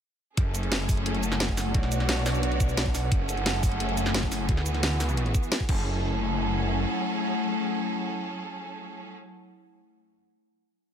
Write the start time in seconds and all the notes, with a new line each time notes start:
0.37 F#1 F#3 A3 C#4 E4 G#4 A4, kick, closed hi-hat
0.55 closed hi-hat, cabasa
0.63 closed hi-hat
0.72 snare, closed hi-hat
0.80 F#5
0.89 kick, open hi-hat, cabasa
0.97 closed hi-hat
1.06 closed hi-hat
1.15 closed hi-hat
1.23 closed hi-hat, cabasa
1.32 snare, cabasa
1.40 snare, closed hi-hat
1.49 kick, closed hi-hat
1.57 snare, open hi-hat, cabasa
1.74 B1 B3 D4 F#4 C#5 D5, kick, closed hi-hat
1.83 snare
1.92 B4, closed hi-hat, cabasa
2.00 snare, closed hi-hat
2.09 snare, closed hi-hat
2.26 snare, open hi-hat, cabasa
2.35 closed hi-hat, cabasa
2.43 closed hi-hat
2.52 closed hi-hat
2.60 kick, closed hi-hat, cabasa
2.69 cabasa
2.77 snare, closed hi-hat
2.86 kick, closed hi-hat
2.95 snare, open hi-hat, cabasa
3.12 F#1 F#3 A3 C#4 E4 G#4 A4, kick, closed hi-hat
3.29 closed hi-hat, cabasa
3.37 closed hi-hat
3.46 snare, closed hi-hat
3.63 kick, open hi-hat, cabasa
3.72 closed hi-hat
3.80 closed hi-hat
3.89 closed hi-hat
3.97 closed hi-hat, cabasa
4.06 snare, cabasa
4.14 snare, closed hi-hat
4.23 kick, closed hi-hat
4.32 snare, open hi-hat, cabasa
4.49 D2 E3 B3 F#4, kick, closed hi-hat
4.57 snare
4.66 closed hi-hat, cabasa
4.71 G#4, snare, closed hi-hat
4.83 snare, closed hi-hat
5.00 snare, open hi-hat, cabasa
5.09 closed hi-hat, cabasa
5.17 closed hi-hat
5.26 closed hi-hat
5.34 kick, closed hi-hat, cabasa
5.43 cabasa
5.52 snare, closed hi-hat
5.60 kick, closed hi-hat
5.69 F#1 F#3 C#4 E4 G#4 A4, kick, crash
5.74 A3
5.96 F#5